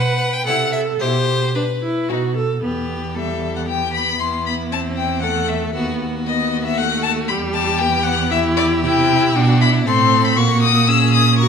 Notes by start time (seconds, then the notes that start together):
Already playing: B4 F#5
0.33 G5
0.46 C3 E4 A4 F#5
0.72 E5
0.99 B2 E4 G4 C5
1.55 D4 B4
1.82 E4
2.09 B2 D#4 F#4
2.36 A4
2.62 E2 B3 G4
3.15 G3 A4 E5
3.56 F#5
3.66 B3 G4 G5
3.94 B5
4.18 E2 E4 C6
4.46 B5
4.71 C4 A5
4.97 G5
5.22 A3 A4 F#5
5.48 E5
5.74 D#2 B3 F#4
6.00 F#4
6.26 B3 D#5
6.65 E5
6.78 A3 F#5
7.03 A5
7.28 E2 G3 G4 B5
7.53 A5
7.78 B3 G5
8.03 F#5
8.31 E4 G4 E5
8.57 D5
8.84 C3 E4 G5
9.35 B2 D4 F#4
9.61 E4 B5
9.86 A2 C4 A4 C6
10.25 B5
10.37 A#2 A#3 F#4 C#6
10.62 D#6
10.88 C#4 G#4 E6
11.14 D#6
11.39 F#4 A#4 C#6